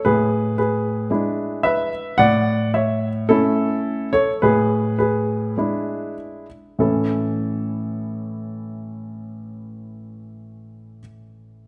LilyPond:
<<
  \new Staff \with { instrumentName = "Grand piano" } { \time 4/4 \key a \major \tempo 4 = 101 <gis' b'>4 <gis' b'>2 <b' e''>4 | <d'' fis''>4 <cis'' e''>4 <e' a'>4. <a' cis''>8 | <gis' b'>4 <gis' b'>2 r4 | <a, e cis' e' a'>1~ |
<a, e cis' e' a'>1 | }
  \new Staff \with { instrumentName = "Grand piano" } { \time 4/4 \key a \major a,2 <gis d' e'>2 | a,2 <a cis'>2 | a,2 <gis d' e'>2 | r1 |
r1 | }
>>